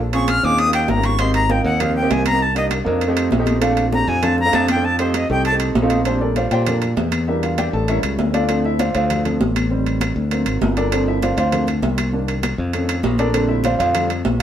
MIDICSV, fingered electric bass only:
0, 0, Header, 1, 2, 480
1, 0, Start_track
1, 0, Key_signature, -2, "major"
1, 0, Tempo, 303644
1, 1884, Time_signature, 4, 2, 24, 8
1, 22798, End_track
2, 0, Start_track
2, 0, Title_t, "Fingered electric bass"
2, 0, Program_c, 0, 33
2, 0, Note_on_c, 0, 34, 93
2, 602, Note_off_c, 0, 34, 0
2, 686, Note_on_c, 0, 39, 92
2, 1355, Note_off_c, 0, 39, 0
2, 1398, Note_on_c, 0, 32, 87
2, 2515, Note_off_c, 0, 32, 0
2, 2599, Note_on_c, 0, 39, 93
2, 3272, Note_off_c, 0, 39, 0
2, 3328, Note_on_c, 0, 36, 90
2, 4440, Note_off_c, 0, 36, 0
2, 4526, Note_on_c, 0, 41, 95
2, 5196, Note_off_c, 0, 41, 0
2, 5245, Note_on_c, 0, 34, 92
2, 6360, Note_off_c, 0, 34, 0
2, 6441, Note_on_c, 0, 41, 103
2, 7115, Note_off_c, 0, 41, 0
2, 7171, Note_on_c, 0, 41, 94
2, 8284, Note_off_c, 0, 41, 0
2, 8373, Note_on_c, 0, 36, 95
2, 9043, Note_off_c, 0, 36, 0
2, 9091, Note_on_c, 0, 34, 89
2, 10207, Note_off_c, 0, 34, 0
2, 10291, Note_on_c, 0, 46, 92
2, 10965, Note_off_c, 0, 46, 0
2, 11013, Note_on_c, 0, 40, 86
2, 12131, Note_off_c, 0, 40, 0
2, 12223, Note_on_c, 0, 33, 90
2, 12669, Note_off_c, 0, 33, 0
2, 12697, Note_on_c, 0, 37, 69
2, 12923, Note_off_c, 0, 37, 0
2, 12940, Note_on_c, 0, 38, 90
2, 14056, Note_off_c, 0, 38, 0
2, 14146, Note_on_c, 0, 38, 94
2, 14815, Note_off_c, 0, 38, 0
2, 14866, Note_on_c, 0, 33, 84
2, 15978, Note_off_c, 0, 33, 0
2, 16058, Note_on_c, 0, 38, 92
2, 16507, Note_off_c, 0, 38, 0
2, 16538, Note_on_c, 0, 32, 64
2, 16764, Note_off_c, 0, 32, 0
2, 16775, Note_on_c, 0, 31, 89
2, 17890, Note_off_c, 0, 31, 0
2, 17971, Note_on_c, 0, 38, 91
2, 18644, Note_off_c, 0, 38, 0
2, 18690, Note_on_c, 0, 36, 88
2, 19805, Note_off_c, 0, 36, 0
2, 19891, Note_on_c, 0, 41, 94
2, 20561, Note_off_c, 0, 41, 0
2, 20606, Note_on_c, 0, 34, 96
2, 21719, Note_off_c, 0, 34, 0
2, 21810, Note_on_c, 0, 41, 101
2, 22477, Note_off_c, 0, 41, 0
2, 22523, Note_on_c, 0, 34, 92
2, 22798, Note_off_c, 0, 34, 0
2, 22798, End_track
0, 0, End_of_file